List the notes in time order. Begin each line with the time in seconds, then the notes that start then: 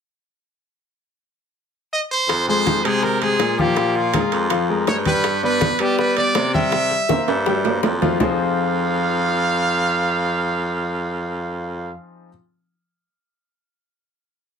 1.93 D#5
2.11 C5
2.29 F2, high bongo, high conga, high timbale
2.48 G#3 G#4 C5, high bongo, high conga
2.66 high bongo, high conga, high timbale
2.85 C3 G#3 G#4 C5, high timbale
3.03 A#4, high bongo, high conga
3.21 G#3 G#4 C5, high bongo, high conga, high timbale
3.39 A#2, high bongo, low bongo, high conga, high timbale
3.58 F3 F4 G4 F5, high bongo, high conga
3.77 F3 F4 F5, high bongo, high conga, high timbale
3.95 F4, high bongo, high conga
4.14 G#3 G#4 A#4, high bongo, high conga, high timbale
4.32 F2, high conga, high timbale
4.50 F3 F4 F5, high bongo, high conga, high timbale
4.69 G#3 G#4 A#4, high conga
4.87 G2 C#5, high bongo, low bongo, high conga, high timbale, low timbale
5.05 G3 G4 B4 G5, high bongo, high conga, high timbale
5.24 high bongo, high conga, high timbale
5.43 B3 B4 D5, high bongo, high conga
5.61 high bongo, high conga, high timbale
5.79 G3 B3 G4 B4 D5, high timbale
5.99 B4, high bongo, high conga
6.17 B3 B4 D5, high bongo, high conga, high timbale
6.35 C3, high bongo, low bongo, high conga, high timbale, low timbale
6.54 G3 G4 E5 G5, high bongo, high conga
6.72 G3 G4 G5, high bongo, high conga, high timbale
6.91 high bongo, high conga
7.09 A#3 A#4 C5, high bongo, high conga, high timbale
7.28 G2, high conga, high timbale
7.46 G3 G4 G5, high bongo, high conga, low timbale
7.65 A#3 A#4 C5, high conga, low timbale
7.83 F2, high bongo, low bongo, high conga, low timbale
8.02 F3 F4 F5, high bongo, high conga, low timbale
8.20 F2 F3 C4 D#4 F4 G#4 C5 F5, low bongo, low conga, low timbale